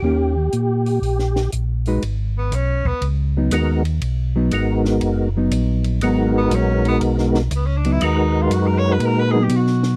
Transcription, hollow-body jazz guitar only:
X:1
M:4/4
L:1/8
Q:"Swing" 1/4=120
K:G#m
V:1 name="Hollow-body jazz guitar"
[D,A,C=G] z6 [^G,DFB] | z4 z [F,B,D] z2 | z [F,B,D] z3 [F,B,D]3 | [F,B,D] z [F,B,D] z4 [F,B,D] |
z4 z [F,B,D]3 |]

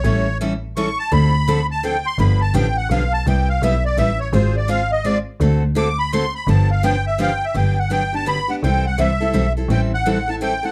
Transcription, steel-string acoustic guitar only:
X:1
M:3/4
L:1/16
Q:"Swing" 1/4=168
K:Gmix
V:1 name="Steel-string acoustic guitar"
[E,G,^CEA]2 z2 [E,G,CEA] z3 [E,G,CEA] z3 | [D,F,CDA]2 z2 [D,F,CDA] z3 [D,F,CDA] z3 | [D,F,B,DG]2 z2 [D,F,B,DG] z3 [D,F,B,DG] z3 | [C,G,B,EG]2 z2 [C,G,B,EG] z3 [C,G,B,EG] z3 |
[_A,CF_A]2 z2 [A,CFA] z3 [A,CFA] z3 | [D,A,C^FA]2 z2 [D,A,CFA] z3 [D,A,CFA] z3 | [D,F,B,DG]2 z2 [D,F,B,DG] z3 [D,F,B,DG] z3 | [K:G] [D,F,B,DG]2 z2 [D,F,B,DG] z [B,DG]2 [D,F,B,DG] z [B,DG]2 |
[C,E,G,CEA]2 z2 [C,E,G,CEA] z [G,CEA]2 [C,E,G,CEA] z [G,CEA]2 | [E,G,CEA]2 z2 [E,G,CEA] z [CEA]2 [E,G,CEA] z [CEA]2 |]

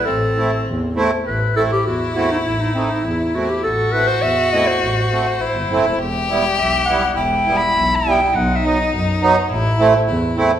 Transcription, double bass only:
X:1
M:2/4
L:1/16
Q:1/4=102
K:none
V:1 name="Double bass" clef=bass
A,,,4 E,,4 | A,,,4 E,,4 | A,,,4 E,,4 | A,,,4 E,,4 |
A,,,4 A,,, G,,, ^F,,, E,,, | E,,,4 B,,,4 | E,,,4 B,,,4 | B,,,4 ^F,,4 |
A,,,4 E,,4 |]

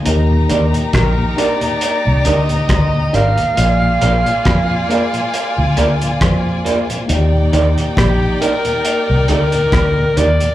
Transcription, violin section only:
X:1
M:4/4
L:1/8
Q:"Swing 16ths" 1/4=68
K:Eb
V:1 name="Violin section"
[EGb]8 | [Fda]8 | [Edg]8 |]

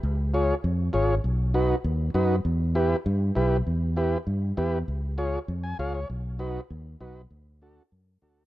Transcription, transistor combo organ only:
X:1
M:4/4
L:1/8
Q:1/4=198
K:Edor
V:1 name="Transistor combo organ"
z2 [^E^Gc] z3 [EGc] z | z2 [^DFB] z3 [DFB] z | z2 [EGB] z3 [EGB] z | z2 [EGB] z3 [EGB] z |
z2 [^E^Gc] z2 ^g [EGc^e] c | z2 [^DFB] z3 [DFB] z | z2 [DFA] z3 [DFA] z |]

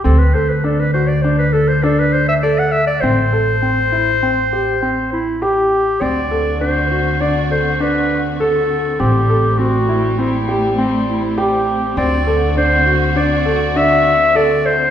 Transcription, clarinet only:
X:1
M:5/4
L:1/16
Q:1/4=101
K:Dmix
V:1 name="Clarinet"
A B c B A B c d c B A c A B c e d f e d | c12- c2 E2 G4 | d4 c4 d2 c2 B4 A4 | G4 F4 E4 z2 E2 G4 |
d4 c4 d4 e4 d2 c2 |]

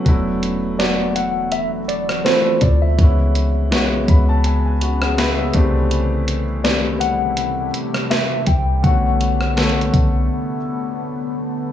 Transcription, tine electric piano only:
X:1
M:4/4
L:1/16
Q:"Swing 16ths" 1/4=82
K:Emix
V:1 name="Tine electric piano"
z4 d2 f2 e2 d2 =c2 d e- | e6- e z8 z | z4 d2 f4 z2 e2 =g2 | f12 z4 |]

